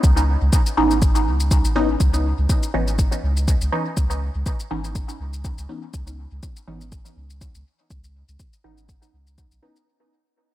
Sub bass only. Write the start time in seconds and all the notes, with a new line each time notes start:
0.04 C#2
0.42 C#2
0.77 G#1
1.26 C#2
1.65 G#1
2.00 C#2
2.38 C#2
2.74 G#1
3.23 C#2
3.61 C#2
3.97 C#2
4.35 C#2
4.71 G#1
5.20 C#2
5.58 C#2
5.94 C#2
6.32 C#2
6.67 G#1
7.17 C#2
7.55 C#2
7.90 C#2
8.29 C#2
8.64 G#1
9.13 C#2
9.52 B1